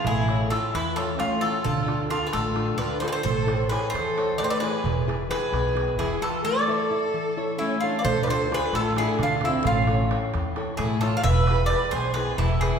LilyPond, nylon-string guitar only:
\new Staff \with { instrumentName = "Nylon-string guitar" } { \time 7/8 \tempo 4 = 131 a8 <e' a' cis''>8 <e' a' cis''>8 e8 <e' a' cis''>8 a8 <e' a' cis''>8 | d8 <d' f' a'>8 <d' f' a'>8 a8 <d' f' a'>8 d8 <d' f' a'>8 | a8 <e' a' cis''>8 <e' a' cis''>8 e8 <e' a' cis''>8 a8 <e' a' cis''>8 | e8 <e' gis' b'>8 <e' gis' b'>8 b,8 <e' gis' b'>8 e8 <e' gis' b'>8 |
a8 <e' a' e''>8 <e' a' e''>8 e8 <e' a' cis''>8 a8 <e' a' cis''>8 | d8 <d' f' a'>8 <d' f' a'>8 a8 <d' f' a'>8 d8 <d' f' a'>8 | a8 <e' a' cis''>8 <e' a' cis''>8 e8 <e' a' cis''>8 a8 <e' a' cis''>8 | e8 <e' gis' b'>8 <e' gis' b'>8 b,8 <e' gis' b'>8 e8 <e' gis' b'>8 | }